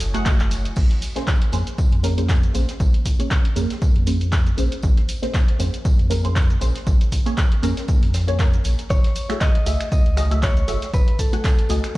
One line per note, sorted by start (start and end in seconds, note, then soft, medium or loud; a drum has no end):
0.00 0.33 F#1 medium
0.00 0.73 A3 medium
0.00 0.73 E4 medium
0.00 0.73 F#4 medium
0.00 0.22 A4 medium
0.00 0.73 C#5 medium
0.00 0.73 G#5 medium
0.00 open hi-hat loud
0.00 tambourine medium
0.00 shaker medium
0.14 0.23 A3 medium
0.14 0.23 F#4 medium
0.14 0.23 G#4 medium
0.14 0.23 F#5 medium
0.14 closed hi-hat medium
0.14 closed hi-hat soft
0.14 shaker soft
0.25 0.75 A3 medium
0.25 0.75 F#4 medium
0.25 0.75 G#4 medium
0.25 0.75 D#5 medium
0.25 kick loud
0.25 snare loud
0.25 clap loud
0.25 closed hi-hat medium
0.25 tambourine medium
0.25 shaker soft
0.40 0.71 F#1 loud
0.40 clap medium
0.40 closed hi-hat soft
0.40 shaker soft
0.51 open hi-hat loud
0.51 tambourine medium
0.51 shaker medium
0.65 closed hi-hat medium
0.65 shaker soft
0.76 0.86 A#1 loud
0.76 kick loud
0.76 tambourine medium
0.76 crash medium
0.76 shaker soft
0.90 snare soft
0.90 closed hi-hat medium
1.02 open hi-hat loud
1.02 tambourine medium
1.02 shaker medium
1.16 1.27 A#3 loud
1.16 1.27 C#4 medium
1.16 1.27 G#4 medium
1.16 1.27 C5 loud
1.16 snare medium
1.16 closed hi-hat medium
1.16 shaker soft
1.27 kick loud
1.27 snare loud
1.27 clap loud
1.27 tambourine medium
1.27 shaker soft
1.42 closed hi-hat medium
1.52 1.63 F2 medium
1.52 2.01 A#3 medium
1.52 2.01 C#4 medium
1.52 2.01 G#4 medium
1.52 2.01 C5 medium
1.52 open hi-hat loud
1.52 tambourine medium
1.52 shaker medium
1.67 closed hi-hat medium
1.67 shaker soft
1.78 kick loud
1.78 tambourine medium
1.78 shaker soft
1.92 2.49 F2 loud
1.92 closed hi-hat soft
2.03 2.15 A#3 loud
2.03 2.16 C#4 medium
2.03 2.16 G#4 medium
2.03 2.16 A#4 loud
2.03 snare soft
2.03 open hi-hat loud
2.03 tambourine medium
2.03 shaker medium
2.17 2.52 A#3 medium
2.17 2.52 C#4 medium
2.17 2.52 G#4 medium
2.17 2.52 C5 loud
2.17 closed hi-hat medium
2.17 shaker soft
2.29 kick loud
2.29 snare loud
2.29 clap loud
2.29 tambourine medium
2.29 shaker soft
2.43 closed hi-hat soft
2.43 shaker soft
2.54 2.64 A#1 loud
2.54 2.68 A#3 medium
2.54 2.68 C#4 medium
2.54 2.68 G#4 medium
2.54 2.68 C5 loud
2.54 open hi-hat loud
2.54 tambourine medium
2.54 shaker medium
2.68 snare medium
2.68 closed hi-hat medium
2.68 shaker soft
2.80 2.90 A#1 medium
2.80 kick loud
2.80 tambourine medium
2.80 shaker soft
2.94 closed hi-hat medium
3.05 kick medium
3.05 open hi-hat loud
3.05 tambourine medium
3.05 shaker medium
3.19 3.53 A#3 medium
3.19 3.53 C#4 medium
3.19 3.54 G#4 medium
3.19 3.54 C#5 loud
3.19 closed hi-hat medium
3.19 shaker soft
3.31 kick loud
3.31 snare loud
3.31 clap loud
3.31 tambourine medium
3.31 shaker soft
3.45 closed hi-hat medium
3.56 3.66 F2 medium
3.56 4.04 A#3 medium
3.56 4.04 C#4 medium
3.56 4.04 G#4 medium
3.56 4.05 A#4 loud
3.56 open hi-hat loud
3.56 tambourine medium
3.56 shaker medium
3.70 snare soft
3.70 closed hi-hat medium
3.70 shaker soft
3.82 kick loud
3.82 tambourine medium
3.82 shaker soft
3.96 4.52 F2 medium
3.96 closed hi-hat soft
4.06 4.55 A#3 medium
4.06 4.55 C#4 medium
4.06 4.55 G#4 medium
4.06 4.55 C5 medium
4.06 snare soft
4.06 open hi-hat loud
4.06 tambourine medium
4.06 shaker medium
4.21 closed hi-hat medium
4.21 shaker soft
4.32 kick loud
4.32 snare loud
4.32 clap loud
4.32 tambourine medium
4.32 shaker soft
4.47 closed hi-hat soft
4.47 shaker soft
4.57 4.68 A#1 loud
4.57 5.19 A#3 medium
4.57 5.19 C#4 medium
4.57 5.20 G#4 medium
4.57 5.20 C5 loud
4.57 open hi-hat loud
4.57 tambourine medium
4.57 shaker medium
4.72 closed hi-hat medium
4.72 shaker soft
4.82 4.93 A#1 medium
4.82 kick loud
4.82 tambourine medium
4.82 shaker soft
4.97 snare soft
4.97 closed hi-hat soft
5.09 open hi-hat loud
5.09 tambourine medium
5.09 shaker medium
5.22 5.33 A#3 loud
5.22 5.34 C#4 medium
5.22 5.34 G#4 medium
5.22 5.34 C5 loud
5.22 snare soft
5.22 closed hi-hat medium
5.22 shaker soft
5.34 kick loud
5.34 snare loud
5.34 clap loud
5.34 tambourine medium
5.34 shaker soft
5.48 closed hi-hat medium
5.59 5.69 F2 medium
5.59 6.08 A#3 medium
5.59 6.08 C#4 medium
5.59 6.08 G#4 medium
5.59 6.08 C5 medium
5.59 open hi-hat loud
5.59 tambourine medium
5.59 shaker medium
5.74 closed hi-hat medium
5.74 shaker soft
5.85 kick loud
5.85 tambourine medium
5.85 shaker soft
5.99 6.56 F2 medium
5.99 closed hi-hat soft
6.10 6.22 A#3 loud
6.10 6.22 C#4 medium
6.10 6.22 G#4 medium
6.10 6.23 A#4 loud
6.10 snare soft
6.10 open hi-hat loud
6.10 tambourine medium
6.10 shaker medium
6.24 6.58 A#3 medium
6.24 6.59 C#4 medium
6.24 6.59 G#4 medium
6.24 6.59 C5 loud
6.24 closed hi-hat medium
6.24 shaker soft
6.36 kick loud
6.36 snare loud
6.36 clap loud
6.36 tambourine medium
6.36 shaker soft
6.50 closed hi-hat soft
6.50 shaker soft
6.61 6.71 A#1 loud
6.61 6.75 A#3 medium
6.61 6.75 C#4 medium
6.61 6.75 G#4 medium
6.61 6.75 C5 loud
6.61 open hi-hat loud
6.61 tambourine medium
6.61 shaker medium
6.76 snare medium
6.76 closed hi-hat medium
6.76 shaker soft
6.87 6.96 A#1 loud
6.87 kick loud
6.87 tambourine medium
6.87 shaker soft
7.01 closed hi-hat soft
7.01 shaker soft
7.12 kick medium
7.12 open hi-hat loud
7.12 tambourine medium
7.12 shaker medium
7.26 7.60 A#3 medium
7.26 7.60 C#4 medium
7.26 7.60 G#4 medium
7.26 7.61 C#5 loud
7.26 closed hi-hat medium
7.26 shaker soft
7.37 kick loud
7.37 snare loud
7.37 clap loud
7.37 tambourine medium
7.37 shaker soft
7.52 closed hi-hat soft
7.63 7.73 F2 loud
7.63 8.11 A#3 loud
7.63 8.11 C#4 medium
7.63 8.11 G#4 medium
7.63 8.11 A#4 loud
7.63 open hi-hat loud
7.63 tambourine medium
7.63 shaker medium
7.77 snare medium
7.77 closed hi-hat medium
7.77 shaker soft
7.88 kick loud
7.88 tambourine medium
7.88 shaker soft
8.03 8.59 F2 loud
8.03 open hi-hat medium
8.14 snare medium
8.14 open hi-hat loud
8.14 tambourine medium
8.14 shaker medium
8.28 8.36 A#3 medium
8.28 8.37 C#4 medium
8.28 8.37 G#4 medium
8.28 8.37 C#5 medium
8.28 closed hi-hat medium
8.28 closed hi-hat soft
8.28 shaker soft
8.39 8.89 A#3 medium
8.39 8.89 C#4 medium
8.39 8.89 G#4 medium
8.39 8.89 A#4 medium
8.39 kick loud
8.39 snare loud
8.39 clap loud
8.39 tambourine medium
8.39 shaker soft
8.54 closed hi-hat soft
8.54 shaker soft
8.64 8.74 A#1 loud
8.64 open hi-hat loud
8.64 tambourine medium
8.64 shaker medium
8.79 closed hi-hat medium
8.79 shaker soft
8.90 9.00 F#1 loud
8.90 9.41 C#5 loud
8.90 kick loud
8.90 tambourine medium
8.90 shaker soft
9.04 snare soft
9.04 closed hi-hat soft
9.16 open hi-hat loud
9.16 tambourine medium
9.16 shaker medium
9.29 9.40 A3 loud
9.29 9.40 F#4 medium
9.29 9.41 G#4 medium
9.29 9.41 E5 loud
9.29 finger snap medium
9.29 snare medium
9.29 closed hi-hat medium
9.29 shaker soft
9.41 9.91 D#5 loud
9.41 kick loud
9.41 snare loud
9.41 clap loud
9.41 tambourine medium
9.41 shaker soft
9.55 closed hi-hat soft
9.66 9.76 C#2 medium
9.66 10.14 A3 medium
9.66 10.14 F#4 medium
9.66 10.15 G#4 medium
9.66 10.15 E5 medium
9.66 open hi-hat loud
9.66 tambourine medium
9.66 shaker medium
9.81 finger snap medium
9.81 closed hi-hat medium
9.81 shaker soft
9.92 10.43 D#5 medium
9.92 kick loud
9.92 tambourine medium
9.92 shaker soft
10.06 10.63 C#2 medium
10.06 closed hi-hat soft
10.17 10.29 A3 loud
10.17 10.29 F#4 medium
10.17 10.29 G#4 medium
10.17 10.29 D#5 loud
10.17 finger snap medium
10.17 snare soft
10.17 open hi-hat loud
10.17 tambourine medium
10.17 shaker medium
10.31 10.65 A3 medium
10.31 10.65 F#4 medium
10.31 10.65 G#4 medium
10.31 10.66 E5 medium
10.31 closed hi-hat medium
10.31 shaker soft
10.42 10.94 C#5 medium
10.42 kick loud
10.42 snare loud
10.42 clap loud
10.42 tambourine medium
10.42 shaker soft
10.57 closed hi-hat soft
10.57 shaker soft
10.68 10.78 F#1 loud
10.68 10.81 A3 medium
10.68 10.81 F#4 medium
10.68 10.82 G#4 medium
10.68 10.82 E5 loud
10.68 open hi-hat loud
10.68 tambourine medium
10.68 shaker medium
10.82 snare soft
10.82 closed hi-hat medium
10.82 shaker soft
10.94 11.03 F#1 loud
10.94 11.20 B4 medium
10.94 kick loud
10.94 tambourine medium
10.94 shaker soft
11.08 closed hi-hat medium
11.19 11.97 A4 medium
11.19 kick medium
11.19 open hi-hat loud
11.19 tambourine medium
11.19 shaker medium
11.33 11.67 A3 medium
11.33 11.67 F#4 medium
11.33 11.67 F#5 loud
11.33 11.67 G#5 medium
11.33 closed hi-hat medium
11.33 shaker soft
11.44 kick loud
11.44 snare loud
11.44 clap loud
11.44 tambourine medium
11.44 shaker soft
11.59 closed hi-hat soft
11.69 11.80 C#2 medium
11.69 11.97 A3 medium
11.69 11.97 F#4 medium
11.69 11.97 D#5 loud
11.69 11.97 G#5 medium
11.69 open hi-hat loud
11.69 tambourine medium
11.69 shaker medium
11.84 finger snap medium
11.84 snare soft
11.84 closed hi-hat medium
11.84 shaker soft